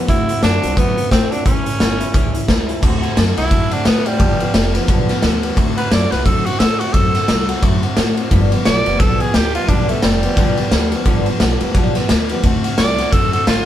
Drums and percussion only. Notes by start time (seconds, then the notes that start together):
0.08 kick, closed hi-hat
0.29 closed hi-hat
0.43 snare, closed hi-hat
0.63 closed hi-hat
0.77 kick, closed hi-hat
0.98 closed hi-hat
1.11 kick, snare, closed hi-hat
1.32 closed hi-hat
1.46 kick, closed hi-hat
1.66 closed hi-hat
1.80 snare, closed hi-hat
2.00 closed hi-hat
2.14 kick, closed hi-hat
2.35 closed hi-hat
2.48 kick, snare, closed hi-hat
2.69 closed hi-hat
2.83 kick, crash
3.03 ride
3.17 snare, ride
3.37 ride
3.51 kick, ride
3.71 ride
3.85 snare, ride
4.06 ride
4.20 kick, ride
4.40 ride
4.54 snare, ride
4.75 snare, ride
4.88 kick, snare, ride
5.09 snare, ride
5.23 snare, ride
5.43 ride
5.57 kick, ride
5.78 ride
5.92 snare, ride
6.12 snare, ride
6.26 kick, ride
6.46 ride
6.60 snare, ride
6.81 ride
6.94 kick, ride
7.15 snare, ride
7.28 snare, ride
7.49 ride
7.63 kick, ride
7.83 ride
7.97 snare, ride
8.17 ride
8.31 kick, ride
8.52 ride
8.65 snare, ride
8.86 ride
9.00 kick, ride
9.20 ride
9.34 snare, ride
9.55 ride
9.69 kick, ride
9.89 ride
10.02 snare, ride
10.23 ride
10.37 kick, snare, ride
10.57 ride
10.71 snare, ride
10.92 ride
11.05 kick, ride
11.26 ride
11.40 snare, ride
11.60 ride
11.74 kick, ride
11.95 snare, ride
12.09 snare, ride
12.29 ride
12.43 kick, ride
12.64 ride
12.78 snare, ride
12.98 snare, ride
13.12 kick, snare, ride
13.33 ride
13.47 snare, ride